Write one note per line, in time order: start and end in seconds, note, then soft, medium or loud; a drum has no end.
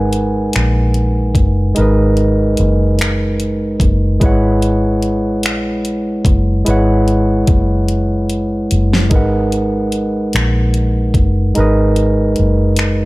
0.00 0.50 G#1 medium
0.00 1.71 G#3 medium
0.00 1.72 D#4 medium
0.00 1.73 A#4 medium
0.00 1.73 B4 medium
0.00 1.74 F#5 medium
0.00 4.23 G#5 medium
0.13 closed hi-hat soft
0.53 1.32 A#1 medium
0.53 finger snap loud
0.53 closed hi-hat medium
0.94 closed hi-hat medium
1.35 1.72 F#1 medium
1.35 kick medium
1.35 closed hi-hat medium
1.75 2.55 G#1 medium
1.75 4.16 G#3 medium
1.75 4.17 D#4 medium
1.75 4.18 A#4 medium
1.75 closed hi-hat medium
1.79 4.19 B4 medium
1.79 4.20 D#5 medium
2.17 closed hi-hat soft
2.57 3.77 F#1 medium
2.57 closed hi-hat soft
2.99 finger snap loud
2.99 closed hi-hat medium
3.40 closed hi-hat soft
3.80 4.17 F#1 medium
3.80 kick medium
3.80 closed hi-hat medium
4.20 5.45 G#1 medium
4.20 6.61 G#3 medium
4.20 6.62 E4 medium
4.20 6.63 B4 medium
4.20 kick loud
4.20 closed hi-hat medium
4.24 6.64 C#5 medium
4.24 6.64 F#5 medium
4.62 closed hi-hat soft
5.02 closed hi-hat medium
5.43 6.22 A#1 medium
5.43 finger snap loud
5.43 closed hi-hat medium
5.85 closed hi-hat soft
6.25 6.62 F#1 medium
6.25 kick medium
6.25 closed hi-hat medium
6.65 7.45 G#1 medium
6.65 9.06 G#3 medium
6.65 9.07 E4 medium
6.65 9.08 B4 medium
6.65 closed hi-hat medium
6.69 9.08 C#5 medium
6.69 9.09 F#5 medium
7.08 closed hi-hat soft
7.47 8.66 F#1 medium
7.47 kick medium
7.47 closed hi-hat medium
7.88 closed hi-hat medium
8.30 closed hi-hat soft
8.71 9.12 F#1 medium
8.71 closed hi-hat medium
8.93 snare medium
9.09 10.30 G#1 loud
9.09 11.51 G#3 medium
9.09 11.52 D#4 medium
9.09 11.53 A#4 medium
9.09 kick loud
9.09 closed hi-hat medium
9.14 11.53 B4 medium
9.14 11.54 F#5 medium
9.52 closed hi-hat soft
9.92 closed hi-hat medium
10.33 11.12 A#1 medium
10.33 finger snap loud
10.33 closed hi-hat medium
10.74 closed hi-hat soft
11.14 11.52 F#1 medium
11.14 kick medium
11.14 closed hi-hat medium
11.55 12.34 G#1 medium
11.55 13.05 G#3 medium
11.55 13.05 D#4 medium
11.55 13.05 A#4 medium
11.55 closed hi-hat medium
11.59 13.05 B4 medium
11.59 13.05 D#5 medium
11.96 closed hi-hat soft
12.36 13.05 F#1 medium
12.36 closed hi-hat medium
12.76 finger snap loud
12.76 closed hi-hat medium